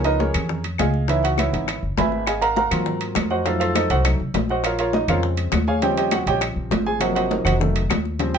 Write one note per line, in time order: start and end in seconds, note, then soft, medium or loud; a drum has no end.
0.00 0.29 C#2 medium
0.00 0.32 F3 medium
0.00 0.32 A#3 soft
0.00 0.33 B3 soft
0.04 0.20 D#4 medium
0.04 0.19 A#4 medium
0.04 0.20 B4 medium
0.04 0.20 D#5 loud
0.04 high bongo soft
0.04 high conga soft
0.04 high timbale medium
0.19 0.62 C#4 medium
0.19 0.61 G#4 medium
0.19 0.62 A#4 medium
0.19 0.61 C#5 medium
0.19 high bongo medium
0.19 high conga medium
0.19 low timbale medium
0.34 0.76 F2 medium
0.34 low conga medium
0.34 high timbale medium
0.34 claves medium
0.49 high bongo medium
0.49 high conga soft
0.49 low conga medium
0.64 high bongo soft
0.64 high conga soft
0.64 high timbale medium
0.78 1.48 C#2 medium
0.78 1.07 G#4 medium
0.78 1.07 D#5 medium
0.78 1.07 F5 medium
0.78 1.07 G#5 medium
0.78 high bongo medium
0.78 low bongo medium
0.78 high conga medium
0.78 high timbale medium
0.78 low timbale medium
0.78 claves medium
0.94 high bongo soft
1.08 1.51 E3 medium
1.08 1.51 B3 soft
1.08 1.51 D#4 medium
1.08 1.23 E4 medium
1.08 1.24 B4 medium
1.08 1.24 C#5 medium
1.08 1.23 E5 medium
1.08 high bongo medium
1.08 high timbale medium
1.23 1.39 F#4 medium
1.23 1.38 F#5 medium
1.23 high bongo soft
1.23 high conga soft
1.23 high timbale medium
1.38 1.80 E4 medium
1.38 1.80 B4 medium
1.38 1.80 C#5 medium
1.38 1.80 E5 medium
1.38 high bongo medium
1.38 high conga medium
1.38 high timbale medium
1.38 low timbale medium
1.38 claves medium
1.52 1.81 G#1 medium
1.52 1.66 E3 soft
1.52 1.66 B3 soft
1.52 1.67 D#4 medium
1.52 high conga soft
1.52 high timbale medium
1.68 high bongo medium
1.68 high conga soft
1.68 high timbale medium
1.68 claves medium
1.83 1.97 F#1 medium
1.83 high conga soft
1.97 2.66 G#1 medium
1.97 2.26 B4 medium
1.97 2.26 E5 medium
1.97 2.26 G#5 medium
1.97 2.26 B5 medium
1.97 high bongo medium
1.97 low bongo medium
1.97 high conga medium
1.97 high timbale medium
1.97 low timbale medium
2.12 high bongo soft
2.27 2.42 G#4 medium
2.27 2.42 D#5 medium
2.27 2.40 F5 medium
2.27 2.42 G#5 medium
2.27 high bongo medium
2.27 high conga soft
2.27 high timbale medium
2.27 claves medium
2.41 2.55 A#4 medium
2.41 2.55 F5 medium
2.41 2.56 F#5 medium
2.41 2.55 A#5 loud
2.41 high bongo soft
2.41 high conga soft
2.41 high timbale medium
2.56 2.98 A#4 medium
2.56 2.98 F5 medium
2.56 2.98 F#5 medium
2.56 2.98 A#5 medium
2.56 high bongo medium
2.56 high conga medium
2.56 low timbale medium
2.71 3.13 G#2 medium
2.71 3.42 F#3 medium
2.71 3.42 A#3 soft
2.71 3.42 C4 soft
2.71 3.42 F4 medium
2.71 low conga medium
2.71 high timbale medium
2.71 claves medium
2.86 high bongo medium
2.86 high conga soft
2.86 low conga medium
3.01 high bongo soft
3.01 high conga soft
3.01 high timbale medium
3.15 3.85 F2 medium
3.15 high bongo medium
3.15 low bongo medium
3.15 high conga medium
3.15 high timbale medium
3.15 low timbale medium
3.15 claves medium
3.30 3.45 F#4 medium
3.30 3.45 C5 medium
3.30 3.45 D#5 medium
3.30 3.45 F#5 medium
3.30 high bongo soft
3.45 4.03 F#3 medium
3.45 4.03 A3 medium
3.45 3.75 D#4 medium
3.45 3.59 F4 medium
3.45 3.59 A4 medium
3.45 3.59 C5 medium
3.45 3.58 F5 medium
3.45 high bongo medium
3.45 high timbale medium
3.60 3.75 F4 medium
3.60 3.75 A4 medium
3.60 3.74 C5 medium
3.60 3.75 F5 medium
3.60 high bongo soft
3.60 high conga soft
3.60 high timbale medium
3.75 3.90 D#4 medium
3.75 3.90 A4 medium
3.75 3.90 C5 medium
3.75 3.89 D#5 medium
3.75 high bongo medium
3.75 high conga medium
3.75 high timbale medium
3.75 low timbale medium
3.75 claves medium
3.90 4.18 C2 medium
3.90 4.05 F#4 medium
3.90 4.05 C5 medium
3.90 4.05 D#5 medium
3.90 4.05 F#5 loud
3.90 high conga soft
3.90 high timbale medium
4.04 4.18 F#3 soft
4.04 4.18 A3 soft
4.04 4.18 D#4 medium
4.04 high bongo medium
4.04 high conga soft
4.04 high timbale medium
4.04 claves medium
4.19 4.34 C2 medium
4.19 high conga soft
4.34 5.03 A#1 medium
4.34 high bongo medium
4.34 low bongo medium
4.34 high conga medium
4.34 high timbale medium
4.34 low timbale medium
4.49 4.65 F#4 medium
4.49 4.65 C5 medium
4.49 4.65 D#5 medium
4.49 4.64 F#5 medium
4.49 high bongo soft
4.49 high conga medium
4.64 4.79 F4 medium
4.64 4.78 A#4 medium
4.64 4.78 C#5 medium
4.64 4.78 F5 medium
4.64 high bongo medium
4.64 high conga soft
4.64 high timbale medium
4.64 claves medium
4.79 4.94 F4 medium
4.79 4.94 A#4 medium
4.79 4.94 C#5 medium
4.79 4.94 F5 medium
4.79 high bongo soft
4.79 high conga soft
4.79 high timbale medium
4.93 5.09 D#4 medium
4.93 5.08 D#5 medium
4.93 high bongo medium
4.93 high conga loud
4.93 low timbale medium
5.08 5.50 F2 medium
5.08 5.51 C#3 medium
5.08 5.51 G#3 soft
5.08 5.51 C4 medium
5.08 5.24 F4 medium
5.08 5.24 A#4 medium
5.08 5.23 C#5 medium
5.08 5.23 F5 medium
5.08 low conga medium
5.08 high timbale medium
5.08 claves medium
5.23 high bongo medium
5.23 high conga soft
5.37 high bongo soft
5.37 high conga soft
5.37 high timbale medium
5.52 6.21 D#2 medium
5.52 high bongo medium
5.52 low bongo medium
5.52 high conga medium
5.52 high timbale medium
5.52 low timbale medium
5.52 claves medium
5.67 5.83 G#4 medium
5.67 5.82 C#5 medium
5.67 5.82 F5 medium
5.67 5.82 G#5 loud
5.67 high bongo soft
5.67 high conga medium
5.82 6.97 C#3 medium
5.82 6.97 F3 medium
5.82 6.97 G3 medium
5.82 6.97 C4 medium
5.82 5.96 G4 medium
5.82 5.96 C#5 medium
5.82 5.96 D#5 medium
5.82 5.96 G5 medium
5.82 high bongo medium
5.82 high conga soft
5.82 high timbale medium
5.97 6.12 G4 medium
5.97 6.12 C#5 medium
5.97 6.12 D#5 medium
5.97 6.12 G5 medium
5.97 high bongo soft
5.97 high timbale medium
6.11 6.27 F#4 medium
6.11 6.27 F#5 medium
6.11 high bongo medium
6.11 high conga medium
6.11 high timbale medium
6.11 low timbale medium
6.11 claves medium
6.27 6.54 A#1 medium
6.27 6.42 G4 medium
6.27 6.42 C#5 medium
6.27 6.42 D#5 medium
6.27 6.42 G5 medium
6.27 high conga soft
6.27 high timbale medium
6.41 high bongo medium
6.41 high conga soft
6.41 high timbale medium
6.41 claves medium
6.56 6.70 A#1 medium
6.56 high conga soft
6.71 7.40 G#1 medium
6.71 high bongo medium
6.71 low bongo medium
6.71 high conga medium
6.71 high timbale medium
6.71 low timbale medium
6.86 7.01 G#4 medium
6.86 7.01 G#5 loud
6.86 high bongo soft
7.00 7.57 C3 medium
7.00 7.57 F3 soft
7.00 7.57 F#3 medium
7.00 7.57 A#3 medium
7.00 7.14 F#4 medium
7.00 7.14 C5 medium
7.00 7.15 D#5 medium
7.00 7.14 F#5 medium
7.00 high bongo medium
7.00 high conga soft
7.00 high timbale medium
7.00 claves medium
7.15 7.30 F#4 medium
7.15 7.30 C5 medium
7.15 7.30 D#5 medium
7.15 7.30 F#5 medium
7.15 high bongo soft
7.15 high timbale medium
7.31 7.46 D#4 soft
7.31 7.45 A#4 soft
7.31 7.44 C5 soft
7.31 7.44 D#5 medium
7.31 high bongo medium
7.31 high conga medium
7.31 low timbale medium
7.45 7.87 F1 medium
7.45 7.54 F#4 medium
7.45 7.54 C5 medium
7.45 7.54 D#5 medium
7.45 7.54 F#5 medium
7.45 low conga medium
7.45 high timbale medium
7.45 claves medium
7.60 7.80 D#3 medium
7.60 7.80 F#3 medium
7.60 7.80 A3 medium
7.60 high bongo medium
7.60 high conga soft
7.60 low conga medium
7.75 high bongo soft
7.75 high conga soft
7.75 high timbale medium
7.90 8.38 D#2 medium
7.90 high bongo medium
7.90 low bongo medium
7.90 high conga medium
7.90 high timbale medium
7.90 low timbale medium
7.90 claves medium
8.05 high bongo soft
8.19 8.38 C#3 medium
8.19 8.38 F3 medium
8.19 8.38 G3 medium
8.19 8.38 C4 medium
8.19 high bongo medium
8.19 high conga soft
8.19 high timbale medium
8.34 8.38 G5 loud
8.34 high conga soft
8.34 high timbale medium